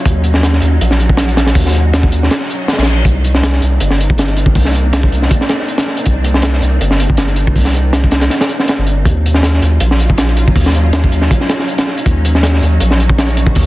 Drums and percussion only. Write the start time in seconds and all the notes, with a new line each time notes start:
0.05 kick, closed hi-hat
0.24 closed hi-hat
0.34 snare
0.43 snare, closed hi-hat
0.53 snare
0.62 closed hi-hat
0.81 closed hi-hat
0.91 snare
0.99 closed hi-hat
1.09 kick
1.17 snare, closed hi-hat
1.29 closed hi-hat
1.37 snare, closed hi-hat
1.47 snare, closed hi-hat
1.55 kick, open hi-hat
1.66 snare
1.75 closed hi-hat
1.93 snare, closed hi-hat
2.03 kick
2.12 closed hi-hat
2.23 snare
2.31 snare, closed hi-hat
2.41 snare
2.50 closed hi-hat
2.68 snare, closed hi-hat
2.73 snare, closed hi-hat
2.78 snare, closed hi-hat
2.82 snare, closed hi-hat
2.87 closed hi-hat
3.05 kick, closed hi-hat
3.24 closed hi-hat
3.35 snare
3.43 snare, closed hi-hat
3.53 snare
3.62 closed hi-hat
3.80 closed hi-hat
3.90 snare
4.00 closed hi-hat
4.10 kick
4.18 snare, closed hi-hat
4.28 closed hi-hat
4.37 closed hi-hat
4.46 kick
4.55 kick, open hi-hat
4.65 snare
4.75 closed hi-hat
4.93 snare, closed hi-hat
5.03 kick
5.12 closed hi-hat
5.22 snare
5.31 kick, closed hi-hat
5.41 snare
5.49 snare, closed hi-hat
5.59 snare
5.68 closed hi-hat
5.78 snare, closed hi-hat
5.87 snare
5.97 closed hi-hat
6.06 kick, closed hi-hat
6.24 closed hi-hat
6.34 snare
6.42 snare, closed hi-hat
6.53 snare
6.62 closed hi-hat
6.81 closed hi-hat
6.91 snare
7.00 closed hi-hat
7.10 kick
7.17 snare, closed hi-hat
7.28 closed hi-hat
7.36 closed hi-hat
7.47 kick
7.56 kick, open hi-hat
7.65 snare
7.74 closed hi-hat
7.93 snare, closed hi-hat
8.04 kick
8.11 snare, closed hi-hat
8.21 snare, closed hi-hat
8.30 snare, closed hi-hat
8.41 snare, closed hi-hat
8.49 closed hi-hat
8.60 snare
8.68 snare, closed hi-hat
8.87 closed hi-hat
9.05 kick, closed hi-hat
9.26 closed hi-hat
9.34 snare
9.43 snare, closed hi-hat
9.54 snare
9.62 closed hi-hat
9.80 closed hi-hat
9.91 snare
10.00 closed hi-hat
10.10 kick
10.18 snare, closed hi-hat
10.28 closed hi-hat
10.37 closed hi-hat
10.48 kick
10.56 kick, open hi-hat
10.66 snare
10.75 closed hi-hat
10.93 snare, closed hi-hat
11.04 kick
11.12 closed hi-hat
11.21 snare
11.31 kick, closed hi-hat
11.41 snare
11.49 snare, closed hi-hat
11.59 snare
11.68 closed hi-hat
11.78 snare, closed hi-hat
11.87 snare
11.98 closed hi-hat
12.06 kick, closed hi-hat
12.25 closed hi-hat
12.35 snare
12.43 snare, closed hi-hat
12.54 snare
12.62 closed hi-hat
12.80 closed hi-hat
12.91 snare
13.00 closed hi-hat
13.09 kick
13.18 snare, closed hi-hat
13.28 closed hi-hat
13.37 closed hi-hat
13.47 kick
13.55 kick, open hi-hat